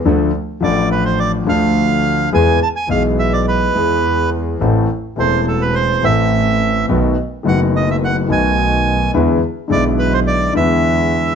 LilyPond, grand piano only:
\new Staff \with { instrumentName = "Grand piano" } { \clef bass \time 4/4 \key e \phrygian \tempo 4 = 106 <d, d f a d' a'>8 r8 <a,, a, f a d' a'>4. <d, d f a d' a'>4. | <e, e gis b gis'>8 r8 <b,, b, e gis b gis'>4. <e, e gis b gis'>4. | <a,, a, e a c' a'>8 r8 <e,, e, e a c' a'>4. <a,, a, e a c' a'>4. | <b,, b, dis a b fis'>8 r8 <fis,, fis, dis a b fis'>4. <b,, b, dis a b fis'>4. |
<e, d e gis b e'>8 r8 <b,, b, d gis b e'>4. <e, d e gis b e'>4. | }